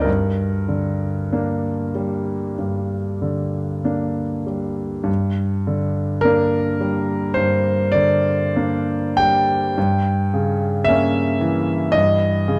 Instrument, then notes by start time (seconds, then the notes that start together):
grand piano
0.01 G2 A#4
0.69 D3
1.32 A#3 D4
1.95 G3
2.58 G2
3.22 D3
3.84 A#3 D4
4.47 G3
5.04 G2
5.67 D3
6.21 A#3 D4 A#4
6.81 G3
7.34 G2 C5
7.92 D3 D5
8.56 A#3 D4
9.17 G3 G5
9.77 G2
10.34 C#3
10.84 A#3 E5
10.88 C#4
11.41 E3
11.92 G2 D#5
12.48 C#3